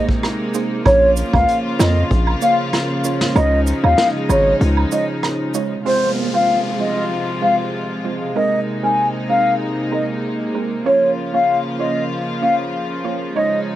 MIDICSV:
0, 0, Header, 1, 7, 480
1, 0, Start_track
1, 0, Key_signature, -5, "minor"
1, 0, Tempo, 625000
1, 659, Time_signature, 4, 2, 24, 8
1, 10565, End_track
2, 0, Start_track
2, 0, Title_t, "Flute"
2, 0, Program_c, 0, 73
2, 659, Note_on_c, 0, 73, 112
2, 844, Note_off_c, 0, 73, 0
2, 1026, Note_on_c, 0, 77, 86
2, 1210, Note_off_c, 0, 77, 0
2, 1380, Note_on_c, 0, 75, 78
2, 1564, Note_off_c, 0, 75, 0
2, 1861, Note_on_c, 0, 77, 79
2, 1958, Note_off_c, 0, 77, 0
2, 2580, Note_on_c, 0, 75, 100
2, 2764, Note_off_c, 0, 75, 0
2, 2949, Note_on_c, 0, 77, 84
2, 3132, Note_off_c, 0, 77, 0
2, 3302, Note_on_c, 0, 73, 88
2, 3485, Note_off_c, 0, 73, 0
2, 3779, Note_on_c, 0, 75, 77
2, 3877, Note_off_c, 0, 75, 0
2, 4500, Note_on_c, 0, 72, 94
2, 4684, Note_off_c, 0, 72, 0
2, 4872, Note_on_c, 0, 77, 75
2, 5054, Note_off_c, 0, 77, 0
2, 5222, Note_on_c, 0, 75, 68
2, 5405, Note_off_c, 0, 75, 0
2, 5701, Note_on_c, 0, 77, 74
2, 5798, Note_off_c, 0, 77, 0
2, 6417, Note_on_c, 0, 75, 90
2, 6602, Note_off_c, 0, 75, 0
2, 6786, Note_on_c, 0, 80, 76
2, 6971, Note_off_c, 0, 80, 0
2, 7140, Note_on_c, 0, 77, 83
2, 7324, Note_off_c, 0, 77, 0
2, 7622, Note_on_c, 0, 75, 74
2, 7719, Note_off_c, 0, 75, 0
2, 8343, Note_on_c, 0, 73, 100
2, 8526, Note_off_c, 0, 73, 0
2, 8707, Note_on_c, 0, 77, 76
2, 8891, Note_off_c, 0, 77, 0
2, 9059, Note_on_c, 0, 75, 68
2, 9244, Note_off_c, 0, 75, 0
2, 9537, Note_on_c, 0, 77, 74
2, 9636, Note_off_c, 0, 77, 0
2, 10258, Note_on_c, 0, 75, 95
2, 10443, Note_off_c, 0, 75, 0
2, 10565, End_track
3, 0, Start_track
3, 0, Title_t, "Synth pluck"
3, 0, Program_c, 1, 84
3, 0, Note_on_c, 1, 58, 76
3, 0, Note_on_c, 1, 63, 72
3, 0, Note_on_c, 1, 68, 74
3, 0, Note_on_c, 1, 72, 89
3, 100, Note_off_c, 1, 58, 0
3, 101, Note_off_c, 1, 63, 0
3, 101, Note_off_c, 1, 68, 0
3, 102, Note_off_c, 1, 72, 0
3, 418, Note_on_c, 1, 58, 81
3, 419, Note_on_c, 1, 63, 75
3, 421, Note_on_c, 1, 68, 74
3, 423, Note_on_c, 1, 72, 85
3, 580, Note_off_c, 1, 58, 0
3, 581, Note_off_c, 1, 63, 0
3, 582, Note_off_c, 1, 68, 0
3, 582, Note_off_c, 1, 72, 0
3, 656, Note_on_c, 1, 58, 91
3, 658, Note_on_c, 1, 61, 84
3, 660, Note_on_c, 1, 65, 88
3, 661, Note_on_c, 1, 73, 107
3, 994, Note_off_c, 1, 58, 0
3, 995, Note_off_c, 1, 61, 0
3, 996, Note_off_c, 1, 65, 0
3, 997, Note_off_c, 1, 73, 0
3, 1024, Note_on_c, 1, 58, 83
3, 1026, Note_on_c, 1, 61, 74
3, 1028, Note_on_c, 1, 65, 76
3, 1029, Note_on_c, 1, 73, 93
3, 1351, Note_off_c, 1, 58, 0
3, 1352, Note_off_c, 1, 61, 0
3, 1353, Note_off_c, 1, 65, 0
3, 1354, Note_off_c, 1, 73, 0
3, 1378, Note_on_c, 1, 58, 82
3, 1380, Note_on_c, 1, 61, 75
3, 1380, Note_on_c, 1, 65, 74
3, 1382, Note_on_c, 1, 73, 92
3, 1600, Note_off_c, 1, 58, 0
3, 1601, Note_off_c, 1, 61, 0
3, 1602, Note_off_c, 1, 65, 0
3, 1603, Note_off_c, 1, 73, 0
3, 1858, Note_on_c, 1, 58, 79
3, 1860, Note_on_c, 1, 61, 72
3, 1860, Note_on_c, 1, 65, 71
3, 1862, Note_on_c, 1, 73, 89
3, 2020, Note_off_c, 1, 58, 0
3, 2021, Note_off_c, 1, 61, 0
3, 2021, Note_off_c, 1, 65, 0
3, 2022, Note_off_c, 1, 73, 0
3, 2337, Note_on_c, 1, 58, 79
3, 2338, Note_on_c, 1, 61, 76
3, 2340, Note_on_c, 1, 65, 74
3, 2341, Note_on_c, 1, 73, 88
3, 2500, Note_off_c, 1, 58, 0
3, 2500, Note_off_c, 1, 61, 0
3, 2501, Note_off_c, 1, 65, 0
3, 2502, Note_off_c, 1, 73, 0
3, 2577, Note_on_c, 1, 56, 94
3, 2580, Note_on_c, 1, 63, 88
3, 2580, Note_on_c, 1, 65, 83
3, 2582, Note_on_c, 1, 73, 106
3, 2915, Note_off_c, 1, 56, 0
3, 2916, Note_off_c, 1, 63, 0
3, 2916, Note_off_c, 1, 65, 0
3, 2917, Note_off_c, 1, 73, 0
3, 2946, Note_on_c, 1, 56, 83
3, 2947, Note_on_c, 1, 63, 76
3, 2949, Note_on_c, 1, 65, 77
3, 2950, Note_on_c, 1, 73, 92
3, 3272, Note_off_c, 1, 56, 0
3, 3273, Note_off_c, 1, 63, 0
3, 3274, Note_off_c, 1, 65, 0
3, 3274, Note_off_c, 1, 73, 0
3, 3296, Note_on_c, 1, 56, 76
3, 3298, Note_on_c, 1, 63, 75
3, 3299, Note_on_c, 1, 65, 74
3, 3301, Note_on_c, 1, 73, 85
3, 3520, Note_off_c, 1, 56, 0
3, 3520, Note_off_c, 1, 63, 0
3, 3521, Note_off_c, 1, 65, 0
3, 3522, Note_off_c, 1, 73, 0
3, 3775, Note_on_c, 1, 56, 80
3, 3777, Note_on_c, 1, 63, 71
3, 3779, Note_on_c, 1, 65, 72
3, 3781, Note_on_c, 1, 73, 86
3, 3939, Note_off_c, 1, 56, 0
3, 3939, Note_off_c, 1, 63, 0
3, 3941, Note_off_c, 1, 65, 0
3, 3942, Note_off_c, 1, 73, 0
3, 4258, Note_on_c, 1, 56, 80
3, 4259, Note_on_c, 1, 63, 77
3, 4261, Note_on_c, 1, 65, 74
3, 4262, Note_on_c, 1, 73, 93
3, 4420, Note_off_c, 1, 56, 0
3, 4421, Note_off_c, 1, 63, 0
3, 4421, Note_off_c, 1, 65, 0
3, 4422, Note_off_c, 1, 73, 0
3, 4496, Note_on_c, 1, 56, 90
3, 4498, Note_on_c, 1, 60, 83
3, 4499, Note_on_c, 1, 65, 86
3, 4501, Note_on_c, 1, 72, 98
3, 4834, Note_off_c, 1, 56, 0
3, 4835, Note_off_c, 1, 60, 0
3, 4836, Note_off_c, 1, 65, 0
3, 4837, Note_off_c, 1, 72, 0
3, 4863, Note_on_c, 1, 56, 77
3, 4865, Note_on_c, 1, 60, 71
3, 4867, Note_on_c, 1, 65, 75
3, 4869, Note_on_c, 1, 72, 85
3, 5191, Note_off_c, 1, 56, 0
3, 5191, Note_off_c, 1, 60, 0
3, 5193, Note_off_c, 1, 65, 0
3, 5193, Note_off_c, 1, 72, 0
3, 5217, Note_on_c, 1, 56, 79
3, 5217, Note_on_c, 1, 60, 70
3, 5219, Note_on_c, 1, 65, 67
3, 5221, Note_on_c, 1, 72, 82
3, 5440, Note_off_c, 1, 56, 0
3, 5440, Note_off_c, 1, 60, 0
3, 5441, Note_off_c, 1, 65, 0
3, 5442, Note_off_c, 1, 72, 0
3, 5696, Note_on_c, 1, 56, 76
3, 5698, Note_on_c, 1, 60, 70
3, 5700, Note_on_c, 1, 65, 70
3, 5702, Note_on_c, 1, 72, 79
3, 5859, Note_off_c, 1, 56, 0
3, 5860, Note_off_c, 1, 60, 0
3, 5861, Note_off_c, 1, 65, 0
3, 5862, Note_off_c, 1, 72, 0
3, 6177, Note_on_c, 1, 56, 72
3, 6178, Note_on_c, 1, 60, 69
3, 6180, Note_on_c, 1, 65, 68
3, 6182, Note_on_c, 1, 72, 81
3, 6339, Note_off_c, 1, 56, 0
3, 6340, Note_off_c, 1, 60, 0
3, 6341, Note_off_c, 1, 65, 0
3, 6342, Note_off_c, 1, 72, 0
3, 6417, Note_on_c, 1, 56, 92
3, 6419, Note_on_c, 1, 60, 81
3, 6420, Note_on_c, 1, 63, 83
3, 6421, Note_on_c, 1, 70, 104
3, 6755, Note_off_c, 1, 56, 0
3, 6756, Note_off_c, 1, 60, 0
3, 6756, Note_off_c, 1, 63, 0
3, 6757, Note_off_c, 1, 70, 0
3, 6784, Note_on_c, 1, 56, 81
3, 6785, Note_on_c, 1, 60, 73
3, 6787, Note_on_c, 1, 63, 70
3, 6788, Note_on_c, 1, 70, 85
3, 7111, Note_off_c, 1, 56, 0
3, 7111, Note_off_c, 1, 60, 0
3, 7112, Note_off_c, 1, 63, 0
3, 7113, Note_off_c, 1, 70, 0
3, 7137, Note_on_c, 1, 56, 74
3, 7139, Note_on_c, 1, 60, 69
3, 7141, Note_on_c, 1, 63, 71
3, 7141, Note_on_c, 1, 70, 86
3, 7360, Note_off_c, 1, 56, 0
3, 7361, Note_off_c, 1, 60, 0
3, 7362, Note_off_c, 1, 63, 0
3, 7362, Note_off_c, 1, 70, 0
3, 7615, Note_on_c, 1, 56, 75
3, 7617, Note_on_c, 1, 60, 71
3, 7618, Note_on_c, 1, 63, 69
3, 7620, Note_on_c, 1, 70, 81
3, 7779, Note_off_c, 1, 56, 0
3, 7779, Note_off_c, 1, 60, 0
3, 7780, Note_off_c, 1, 63, 0
3, 7781, Note_off_c, 1, 70, 0
3, 8097, Note_on_c, 1, 56, 75
3, 8098, Note_on_c, 1, 60, 67
3, 8100, Note_on_c, 1, 63, 66
3, 8102, Note_on_c, 1, 70, 80
3, 8260, Note_off_c, 1, 56, 0
3, 8260, Note_off_c, 1, 60, 0
3, 8261, Note_off_c, 1, 63, 0
3, 8262, Note_off_c, 1, 70, 0
3, 8336, Note_on_c, 1, 58, 92
3, 8337, Note_on_c, 1, 61, 83
3, 8339, Note_on_c, 1, 65, 83
3, 8341, Note_on_c, 1, 73, 98
3, 8674, Note_off_c, 1, 58, 0
3, 8675, Note_off_c, 1, 61, 0
3, 8676, Note_off_c, 1, 65, 0
3, 8677, Note_off_c, 1, 73, 0
3, 8704, Note_on_c, 1, 58, 80
3, 8705, Note_on_c, 1, 61, 72
3, 8707, Note_on_c, 1, 65, 71
3, 8709, Note_on_c, 1, 73, 90
3, 9031, Note_off_c, 1, 58, 0
3, 9032, Note_off_c, 1, 61, 0
3, 9032, Note_off_c, 1, 65, 0
3, 9033, Note_off_c, 1, 73, 0
3, 9056, Note_on_c, 1, 58, 75
3, 9057, Note_on_c, 1, 61, 70
3, 9059, Note_on_c, 1, 65, 68
3, 9061, Note_on_c, 1, 73, 80
3, 9280, Note_off_c, 1, 58, 0
3, 9280, Note_off_c, 1, 61, 0
3, 9281, Note_off_c, 1, 65, 0
3, 9282, Note_off_c, 1, 73, 0
3, 9535, Note_on_c, 1, 58, 73
3, 9537, Note_on_c, 1, 61, 69
3, 9539, Note_on_c, 1, 65, 69
3, 9541, Note_on_c, 1, 73, 85
3, 9699, Note_off_c, 1, 58, 0
3, 9700, Note_off_c, 1, 61, 0
3, 9700, Note_off_c, 1, 65, 0
3, 9702, Note_off_c, 1, 73, 0
3, 10016, Note_on_c, 1, 58, 76
3, 10018, Note_on_c, 1, 61, 72
3, 10020, Note_on_c, 1, 65, 70
3, 10020, Note_on_c, 1, 73, 82
3, 10179, Note_off_c, 1, 58, 0
3, 10180, Note_off_c, 1, 61, 0
3, 10181, Note_off_c, 1, 65, 0
3, 10181, Note_off_c, 1, 73, 0
3, 10257, Note_on_c, 1, 56, 87
3, 10259, Note_on_c, 1, 63, 82
3, 10260, Note_on_c, 1, 65, 82
3, 10262, Note_on_c, 1, 73, 103
3, 10565, Note_off_c, 1, 56, 0
3, 10565, Note_off_c, 1, 63, 0
3, 10565, Note_off_c, 1, 65, 0
3, 10565, Note_off_c, 1, 73, 0
3, 10565, End_track
4, 0, Start_track
4, 0, Title_t, "String section"
4, 0, Program_c, 2, 48
4, 0, Note_on_c, 2, 48, 82
4, 0, Note_on_c, 2, 56, 72
4, 0, Note_on_c, 2, 58, 76
4, 0, Note_on_c, 2, 63, 87
4, 629, Note_off_c, 2, 56, 0
4, 640, Note_off_c, 2, 48, 0
4, 640, Note_off_c, 2, 63, 0
4, 659, Note_on_c, 2, 49, 81
4, 660, Note_on_c, 2, 53, 75
4, 660, Note_on_c, 2, 65, 88
4, 2549, Note_off_c, 2, 58, 0
4, 2561, Note_off_c, 2, 65, 0
4, 2577, Note_on_c, 2, 63, 88
4, 2578, Note_on_c, 2, 56, 71
4, 4469, Note_off_c, 2, 49, 0
4, 4469, Note_off_c, 2, 53, 0
4, 4479, Note_off_c, 2, 56, 0
4, 4479, Note_off_c, 2, 63, 0
4, 4496, Note_on_c, 2, 56, 67
4, 4497, Note_on_c, 2, 48, 72
4, 4497, Note_on_c, 2, 53, 63
4, 4497, Note_on_c, 2, 65, 79
4, 6399, Note_off_c, 2, 48, 0
4, 6399, Note_off_c, 2, 53, 0
4, 6399, Note_off_c, 2, 65, 0
4, 6418, Note_on_c, 2, 58, 70
4, 6419, Note_on_c, 2, 48, 74
4, 6420, Note_on_c, 2, 63, 81
4, 8307, Note_off_c, 2, 56, 0
4, 8320, Note_off_c, 2, 48, 0
4, 8320, Note_off_c, 2, 63, 0
4, 8337, Note_on_c, 2, 53, 69
4, 8337, Note_on_c, 2, 65, 79
4, 8338, Note_on_c, 2, 49, 72
4, 10228, Note_off_c, 2, 58, 0
4, 10239, Note_off_c, 2, 65, 0
4, 10260, Note_on_c, 2, 56, 68
4, 10260, Note_on_c, 2, 63, 84
4, 10565, Note_off_c, 2, 49, 0
4, 10565, Note_off_c, 2, 53, 0
4, 10565, Note_off_c, 2, 56, 0
4, 10565, Note_off_c, 2, 63, 0
4, 10565, End_track
5, 0, Start_track
5, 0, Title_t, "808-style bass"
5, 0, Program_c, 3, 38
5, 660, Note_on_c, 3, 34, 105
5, 945, Note_off_c, 3, 34, 0
5, 1025, Note_on_c, 3, 37, 96
5, 1113, Note_off_c, 3, 37, 0
5, 1378, Note_on_c, 3, 41, 95
5, 1565, Note_off_c, 3, 41, 0
5, 1620, Note_on_c, 3, 34, 107
5, 1806, Note_off_c, 3, 34, 0
5, 2578, Note_on_c, 3, 37, 107
5, 2864, Note_off_c, 3, 37, 0
5, 2946, Note_on_c, 3, 39, 85
5, 3034, Note_off_c, 3, 39, 0
5, 3298, Note_on_c, 3, 32, 96
5, 3485, Note_off_c, 3, 32, 0
5, 3540, Note_on_c, 3, 37, 113
5, 3726, Note_off_c, 3, 37, 0
5, 10565, End_track
6, 0, Start_track
6, 0, Title_t, "Downlifter"
6, 0, Program_c, 4, 103
6, 4498, Note_on_c, 4, 60, 76
6, 8339, Note_off_c, 4, 60, 0
6, 10565, End_track
7, 0, Start_track
7, 0, Title_t, "Drums"
7, 66, Note_on_c, 9, 36, 103
7, 142, Note_off_c, 9, 36, 0
7, 179, Note_on_c, 9, 37, 93
7, 179, Note_on_c, 9, 76, 67
7, 182, Note_on_c, 9, 42, 68
7, 255, Note_off_c, 9, 76, 0
7, 256, Note_off_c, 9, 37, 0
7, 258, Note_off_c, 9, 42, 0
7, 416, Note_on_c, 9, 69, 76
7, 420, Note_on_c, 9, 42, 43
7, 493, Note_off_c, 9, 69, 0
7, 497, Note_off_c, 9, 42, 0
7, 657, Note_on_c, 9, 76, 82
7, 659, Note_on_c, 9, 36, 114
7, 660, Note_on_c, 9, 42, 72
7, 734, Note_off_c, 9, 76, 0
7, 736, Note_off_c, 9, 36, 0
7, 737, Note_off_c, 9, 42, 0
7, 896, Note_on_c, 9, 69, 90
7, 901, Note_on_c, 9, 42, 54
7, 973, Note_off_c, 9, 69, 0
7, 978, Note_off_c, 9, 42, 0
7, 1025, Note_on_c, 9, 36, 95
7, 1029, Note_on_c, 9, 76, 76
7, 1102, Note_off_c, 9, 36, 0
7, 1106, Note_off_c, 9, 76, 0
7, 1139, Note_on_c, 9, 42, 80
7, 1216, Note_off_c, 9, 42, 0
7, 1380, Note_on_c, 9, 42, 48
7, 1382, Note_on_c, 9, 38, 103
7, 1382, Note_on_c, 9, 69, 70
7, 1382, Note_on_c, 9, 76, 72
7, 1456, Note_off_c, 9, 42, 0
7, 1459, Note_off_c, 9, 38, 0
7, 1459, Note_off_c, 9, 69, 0
7, 1459, Note_off_c, 9, 76, 0
7, 1620, Note_on_c, 9, 36, 98
7, 1620, Note_on_c, 9, 42, 74
7, 1696, Note_off_c, 9, 36, 0
7, 1697, Note_off_c, 9, 42, 0
7, 1744, Note_on_c, 9, 76, 79
7, 1821, Note_off_c, 9, 76, 0
7, 1855, Note_on_c, 9, 69, 73
7, 1860, Note_on_c, 9, 42, 57
7, 1932, Note_off_c, 9, 69, 0
7, 1937, Note_off_c, 9, 42, 0
7, 2098, Note_on_c, 9, 37, 92
7, 2098, Note_on_c, 9, 38, 67
7, 2099, Note_on_c, 9, 76, 68
7, 2100, Note_on_c, 9, 42, 72
7, 2175, Note_off_c, 9, 37, 0
7, 2175, Note_off_c, 9, 38, 0
7, 2176, Note_off_c, 9, 76, 0
7, 2177, Note_off_c, 9, 42, 0
7, 2337, Note_on_c, 9, 69, 80
7, 2339, Note_on_c, 9, 42, 43
7, 2413, Note_off_c, 9, 69, 0
7, 2416, Note_off_c, 9, 42, 0
7, 2465, Note_on_c, 9, 38, 127
7, 2542, Note_off_c, 9, 38, 0
7, 2577, Note_on_c, 9, 42, 70
7, 2579, Note_on_c, 9, 76, 82
7, 2654, Note_off_c, 9, 42, 0
7, 2656, Note_off_c, 9, 76, 0
7, 2818, Note_on_c, 9, 69, 85
7, 2820, Note_on_c, 9, 42, 53
7, 2894, Note_off_c, 9, 69, 0
7, 2897, Note_off_c, 9, 42, 0
7, 2948, Note_on_c, 9, 76, 74
7, 3025, Note_off_c, 9, 76, 0
7, 3057, Note_on_c, 9, 37, 65
7, 3057, Note_on_c, 9, 38, 111
7, 3058, Note_on_c, 9, 42, 79
7, 3134, Note_off_c, 9, 37, 0
7, 3134, Note_off_c, 9, 38, 0
7, 3135, Note_off_c, 9, 42, 0
7, 3298, Note_on_c, 9, 42, 50
7, 3301, Note_on_c, 9, 69, 69
7, 3301, Note_on_c, 9, 76, 70
7, 3375, Note_off_c, 9, 42, 0
7, 3378, Note_off_c, 9, 69, 0
7, 3378, Note_off_c, 9, 76, 0
7, 3540, Note_on_c, 9, 42, 75
7, 3616, Note_off_c, 9, 42, 0
7, 3664, Note_on_c, 9, 76, 76
7, 3741, Note_off_c, 9, 76, 0
7, 3776, Note_on_c, 9, 69, 69
7, 3779, Note_on_c, 9, 42, 54
7, 3853, Note_off_c, 9, 69, 0
7, 3856, Note_off_c, 9, 42, 0
7, 4018, Note_on_c, 9, 37, 96
7, 4018, Note_on_c, 9, 76, 71
7, 4020, Note_on_c, 9, 42, 67
7, 4094, Note_off_c, 9, 37, 0
7, 4095, Note_off_c, 9, 76, 0
7, 4097, Note_off_c, 9, 42, 0
7, 4256, Note_on_c, 9, 69, 78
7, 4259, Note_on_c, 9, 42, 43
7, 4333, Note_off_c, 9, 69, 0
7, 4336, Note_off_c, 9, 42, 0
7, 10565, End_track
0, 0, End_of_file